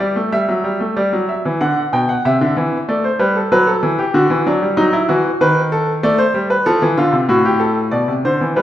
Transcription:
0.00 G3 D5
0.16 A3
0.32 G3 E5
0.49 F#3
0.64 G3
0.80 A3
0.96 G3 D5
1.13 F#3
1.29 E5
1.45 E3
1.61 D3 F#5
1.93 B2 G5
2.09 F#5
2.25 C3 E5
2.41 D3
2.57 E3
2.89 A3 D5
3.04 C5
3.19 G3 B4
3.36 A4
3.52 F#3 B4
3.67 A4
3.83 E3
3.99 G4
4.14 D3 F#4
4.30 E3
4.47 F#3 D4
4.62 G3
4.77 F#3 D#4
4.93 E4
5.09 E3 F#4
5.41 D#3 B4
5.72 A4
6.03 A3 D5
6.18 C5
6.34 G3
6.50 B4
6.66 F3 A4
6.82 E3
6.97 D3 F4
7.13 C3
7.29 A2 F#4
7.45 G4
7.60 A4
7.91 B2 D5
8.08 C3
8.25 D3 C5
8.41 E3
8.56 G3 B4

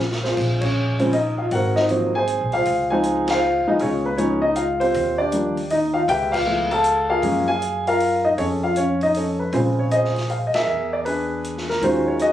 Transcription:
Already playing: A#1 F#4 A#4
0.12 snare
0.23 C4 F4 G#4 C5, snare
0.37 A#1, kick, crash
0.61 C#4 G#4 C#5, kick, crash
0.99 C#3 F3 G#3 C4, open hi-hat
1.13 D#4 D#5, open hi-hat
1.38 F4 F5
1.51 G#1 F#4 A#4 C5 F#5, open hi-hat
1.76 D#4 C5 D#5, snare
1.89 F3 F#3 A#3 C4, open hi-hat
2.15 G#4 C5 G#5
2.27 closed hi-hat
2.41 A#1
2.52 C2 F4 G#4 C5 F5, open hi-hat
2.65 C#2, open hi-hat
2.90 F3 G#3 C4 D#4 G#4 F5 G#5
3.03 closed hi-hat
3.28 F4 F5, snare, ride
3.32 C5
3.67 F3 G#3 B3 D#4 D#5, muted upright bass stroke
3.79 C#2 G#4 C#5, open hi-hat
3.84 C#4 F4
4.05 B3 B4
4.17 F3 G#3 B3 C#4 D#4 C#5, closed hi-hat
4.42 D#4 D#5
4.56 F4 F5, closed hi-hat
4.80 C4 F4 G4 C5, open hi-hat
4.94 D#2, open hi-hat
5.18 D4 G4 D5
5.32 F3 G3 A#3 D4, closed hi-hat
5.57 open hi-hat
5.70 D#4 D#5, open hi-hat
5.94 F4 F5
6.08 C#2 G4 B4 E5 G5, open hi-hat
6.32 F4 B4 F5, kick, crash
6.46 F3 A3 B3 E4
6.71 A4 F5 A5, open hi-hat
6.84 closed hi-hat
7.10 F4 G#4 A#4 F5
7.22 F#2 F3 G#3 A#3 C#4, open hi-hat
7.48 G#4 F5 G#5
7.62 closed hi-hat
7.87 F4 A#4 F5, open hi-hat
8.00 open hi-hat
8.25 D#4 D#5
8.38 F2 C#4 G#4 A4 C#5, open hi-hat
8.63 F4 F5
8.76 C#4 C#5, closed hi-hat
9.01 D#4 D#5, open hi-hat
9.14 C#4 A4 C#5, open hi-hat
9.39 B4
9.53 A#1 C#3 F3 G#3 C4 F4 G#4 C5, open hi-hat
9.79 C#5
9.91 G#4 C5 D#5, closed hi-hat
10.05 snare
10.16 snare, open hi-hat
10.30 F5, open hi-hat
10.47 D#5
10.54 G#4 A#4 E5, snare, ride
10.67 E2
10.93 D5
11.05 D4 G#4 B4, open hi-hat
11.44 closed hi-hat
11.58 snare
11.69 A#4, snare
11.81 D#2 D#3 F#3 G#3 C#4 F4 F#4 C5, open hi-hat
12.08 C#5
12.19 F#4 G#4 D#5, closed hi-hat

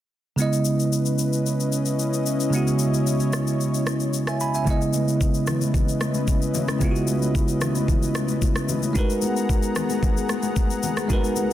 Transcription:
0.36 C#3 G#3 B3 C#4 E4 B4 D#5, shaker
0.40 E4 D#5
0.53 shaker
0.65 shaker
0.80 shaker
0.93 shaker
1.06 shaker
1.19 shaker
1.33 shaker
1.46 shaker
1.60 shaker
1.72 shaker
1.86 shaker
1.99 shaker
2.13 shaker
2.26 shaker
2.40 shaker
2.50 C#3 G#3 B3 C#5, shaker
2.55 E4 F#4
2.67 shaker
2.79 shaker
2.94 shaker
3.07 shaker
3.20 shaker
3.33 cross-stick, shaker
3.47 shaker
3.61 shaker
3.74 shaker
3.87 cross-stick, shaker
4.00 shaker
4.14 shaker
4.27 E5 G#5, cross-stick, shaker
4.40 G#5 B5, shaker
4.54 E5 G#5, shaker
4.65 C#3 G#3 B3 C#4 E4 B4 D#5, kick, shaker
4.69 E4 D#5
4.81 shaker
4.93 high conga, shaker
5.08 shaker
5.21 kick, shaker
5.34 shaker
5.47 cross-stick, low conga, shaker
5.61 high conga, shaker
5.74 kick, low conga, shaker
5.88 shaker
6.01 cross-stick, high conga, shaker
6.14 high conga, shaker
6.28 kick, shaker
6.42 shaker
6.54 high conga, low conga, shaker
6.68 cross-stick, high conga, shaker
6.79 C#3 G#3 B3, kick, shaker
6.83 E4 F4
6.91 F#4
6.96 shaker
7.07 high conga, shaker
7.22 shaker
7.35 kick, shaker
7.48 shaker
7.61 cross-stick, low conga, shaker
7.75 high conga, shaker
7.88 kick, low conga, shaker
8.03 shaker
8.15 cross-stick, high conga, shaker
8.28 high conga, shaker
8.42 kick, shaker
8.56 cross-stick, shaker
8.69 high conga, low conga, shaker
8.82 high conga, shaker
8.93 G#3 B3 D#4 F#4 G#4 F#5 A#5, kick, shaker
8.97 A#4 B4
9.10 shaker
9.22 high conga, shaker
9.37 shaker
9.49 kick, shaker
9.63 shaker
9.76 cross-stick, low conga, shaker
9.90 high conga, shaker
10.03 kick, low conga, shaker
10.17 shaker
10.29 cross-stick, high conga, shaker
10.43 high conga, shaker
10.56 kick, shaker
10.70 shaker
10.83 high conga, low conga, shaker
10.97 cross-stick, high conga, shaker
11.08 G#3 D#4 F#4, kick, shaker
11.12 A#4 B4
11.24 shaker
11.36 high conga, shaker

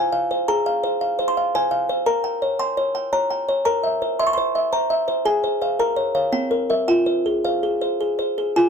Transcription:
Already playing: F4 C5 G#5
0.13 F5
0.31 C5
0.48 G#4 A#5
0.66 F5
0.84 C5
1.01 F5
1.19 C5
1.28 C6
1.37 F5
1.55 C5 G#5
1.71 F5
1.89 C5
2.06 A#4 A#5
2.24 G5
2.42 C#5
2.59 G5 C6
2.77 C#5
2.95 G5
3.13 C#5 A#5
3.30 G5
3.49 C#5
3.65 A#4 A#5
3.83 E5
4.02 C5
4.19 E5 C6
4.27 C#6
4.33 C6
4.38 C5
4.55 E5
4.72 C5 A#5
4.90 E5
5.08 C5
5.25 G#4 G#5
5.44 C5
5.62 C5 F5
5.79 A#4 A#5
5.96 C#5
6.15 C#5 F5
6.32 C4 G5
6.51 A#4
6.70 A#4 E5
6.88 F4 G5
7.06 C5
7.26 G#4
7.44 C5 F5
7.63 G#4
7.81 C5
8.01 G#4
8.19 C5
8.38 G#4
8.56 F4 G#5

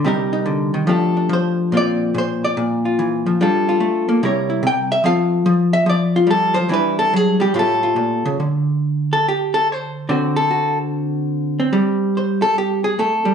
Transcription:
0.04 C3 G3 D#4 G4 A#4
0.33 D#4
0.46 D3
0.74 D#3
0.87 F3 A3 D4 G4 A4
1.17 D4
1.29 F3 C5
1.72 A#2 A#3 C4 F4
1.77 D5
2.14 A#2 C5
2.44 D5
2.57 A#2
2.85 F4
2.99 E3
3.26 F3
3.41 G3 D4 F4 A4
3.69 F4
3.80 A3
4.09 A#3
4.23 C3 G3 E4 A#4 C#5
4.50 E4
4.63 C3
4.67 G5
4.92 E5
5.04 F3 C4 F4 A4 F5
5.46 F3
5.73 E5
5.86 F3 D5
6.16 F4
6.27 G3 A4
6.54 F3 C5
6.69 E3 G3 D4 E4
6.73 B4
6.99 A4
7.14 F#3 G#4
7.40 G3 G4
7.54 A2 A3 F4 G4
7.59 A4
7.83 F4
7.96 A#2
8.25 C#3
8.40 D3
9.13 A4
9.28 G4
9.54 A4
9.72 C5
10.09 D3 C4 F#4
10.36 A4
10.51 F#4
11.60 C4
11.73 G3
12.17 C5
12.42 A4
12.58 G4
12.84 G#4
12.99 A3 A4
13.25 G3

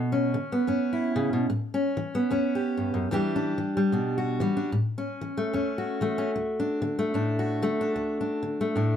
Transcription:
Already playing: B2
0.12 C#4
0.34 D3
0.52 B3
0.67 F#2 C#4
0.93 E4
1.16 C#3
1.33 B2
1.50 A2
1.74 C#4
1.97 E3
2.15 B3
2.31 E2 C#4
2.55 G4
2.77 G2
2.94 F#2
3.11 E2 E3 G3 D4 G4
3.36 D4
3.58 E3
3.77 G3
3.92 B2 D4
4.18 F#4
4.40 E3 G3
4.57 D4
4.72 A2
4.98 C#4
5.21 E3
5.37 A3
5.53 E2 C#4
5.78 F#4
6.01 E3 A3
6.18 C#4
6.36 D2
6.60 D4
6.82 D3
6.99 A3
7.14 A2 D4
7.39 F#4
7.62 D3 A3
7.81 D4
7.96 D2
8.21 D4
8.43 D3
8.61 A3
8.76 A2 D4

